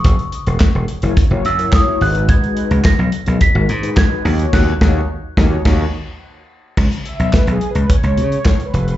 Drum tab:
CC |----------------|----------------|x-------x-------|x---------------|
HH |xxxx--xxx-xx--ox|xxxx--xxx-xx--ox|----------------|-xxx-xxxxxxx-xxx|
CP |----x-------x---|----x-------x---|----------------|----x-------x---|
SD |----o-------o---|----o-------o---|o-o---o-o-------|----o-------o---|
BD |o---o---o---o---|o---o---o---o---|o-o---o-o-------|o---o---o---o---|